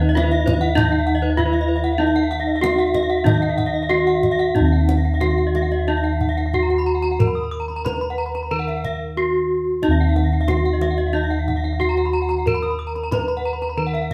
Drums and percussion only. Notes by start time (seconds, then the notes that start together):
0.17 kendang slap, kendang high
0.33 kendang slap
0.47 kendang high, kendang low
0.77 kendang high, kendang low
1.38 kendang low
1.85 kendang slap
2.16 kendang slap
2.32 kendang slap
2.64 kendang high
2.80 kendang slap
2.94 kendang slap, kendang high, kendang low
3.26 kendang high, kendang low
3.43 kendang slap
3.58 kendang low
3.90 kendang high
4.23 kendang slap, kendang low
4.56 kendang low
4.89 kendang high
5.05 kendang slap
5.21 kendang high, kendang low
5.38 kendang slap
5.55 kendang high
5.72 kendang slap
6.04 kendang slap
6.21 kendang low
6.38 kendang slap
6.54 kendang low
6.70 kendang slap
7.04 kendang slap
7.20 kendang low
7.70 kendang slap
7.86 kendang high, kendang low
8.02 kendang slap
8.35 kendang slap
8.68 kendang slap
8.85 kendang low
9.83 kendang low
10.16 kendang high
10.32 kendang slap
10.48 kendang high, kendang low
10.66 kendang slap
10.81 kendang high
10.98 kendang slap
11.31 kendang slap
11.48 kendang low
11.65 kendang slap
11.81 kendang low
11.97 kendang slap
12.31 kendang slap
12.47 kendang low
12.63 kendang slap
12.96 kendang slap
13.12 kendang high, kendang low
13.28 kendang slap
13.62 kendang slap
13.95 kendang slap